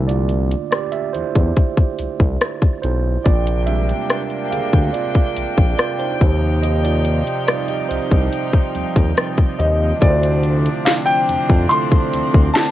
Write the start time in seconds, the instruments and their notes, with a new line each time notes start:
Already playing: analog synth bass C2, tine electric piano D3 A3 A#3 D4
0.08 tine electric piano F4 D5, closed hi-hat
0.29 closed hi-hat
0.51 closed hi-hat
0.71 tine electric piano G4 D5, cross-stick, closed hi-hat
0.92 tine electric piano G4 E5, closed hi-hat
1.13 analog synth bass E2, tine electric piano E4 C5, closed hi-hat
1.35 analog synth bass E2, kick, closed hi-hat
1.57 kick, closed hi-hat
1.77 kick, closed hi-hat
1.99 analog synth bass C2, closed hi-hat
2.20 analog synth bass C2, kick
2.41 cross-stick, closed hi-hat
2.62 kick, closed hi-hat
2.82 analog synth bass B1, tine electric piano E4 C5, closed hi-hat
3.24 analog synth bass A#1, string section C3 A#3 D4 G5, tine electric piano F4 D5, kick, closed hi-hat
3.47 closed hi-hat
3.66 tine electric piano G3 G#3 C4 D4 G4 E5, closed hi-hat
3.89 closed hi-hat
4.10 cross-stick, closed hi-hat
4.30 closed hi-hat
4.51 analog synth bass D2, tine electric piano G#4 F5, closed hi-hat
4.73 analog synth bass D2, kick, closed hi-hat
4.93 tine electric piano F4 D5, closed hi-hat
5.15 kick, closed hi-hat
5.37 analog synth bass A#1, closed hi-hat
5.58 analog synth bass A#1, kick
5.78 tine electric piano F4 D5, cross-stick, closed hi-hat
5.99 tine electric piano D#4 C5, closed hi-hat
6.21 analog synth bass D#2, string section C3 F3 D#4, kick, closed hi-hat
6.62 tine electric piano G4 D#5, closed hi-hat
6.83 tine electric piano F4 D5, closed hi-hat
7.05 closed hi-hat
7.27 closed hi-hat
7.47 tine electric piano F3 G3 C4 F4 D5, cross-stick, closed hi-hat
7.68 tine electric piano G4 D#5, closed hi-hat
7.89 analog synth bass C2, tine electric piano D#4 C5, closed hi-hat
8.11 analog synth bass C2, kick, closed hi-hat
8.33 closed hi-hat
8.53 kick, closed hi-hat
8.74 analog synth bass D#2, tine electric piano F3 G3 C4, closed hi-hat
8.96 analog synth bass D#2, kick, closed hi-hat
9.17 cross-stick, closed hi-hat
9.38 kick, closed hi-hat
9.59 analog synth bass D#2, grand piano D#5, closed hi-hat
9.99 analog synth bass D2, string section C3 F3 C4 D4, tine electric piano D3 A3 E4 F4, grand piano D5, kick, closed hi-hat
10.04 tine electric piano A#4
10.10 tine electric piano C5
10.23 closed hi-hat
10.43 closed hi-hat
10.66 closed hi-hat
10.85 grand piano F5, snare, closed hi-hat
11.06 grand piano G5, closed hi-hat
11.29 analog synth bass F2, closed hi-hat
11.50 analog synth bass F2, kick, closed hi-hat
11.69 tine electric piano D3 A3 E4 F4, grand piano C6, closed hi-hat
11.73 tine electric piano A4
11.92 kick, closed hi-hat
12.13 analog synth bass D2, closed hi-hat
12.34 analog synth bass D2, kick
12.54 grand piano A5, snare, closed hi-hat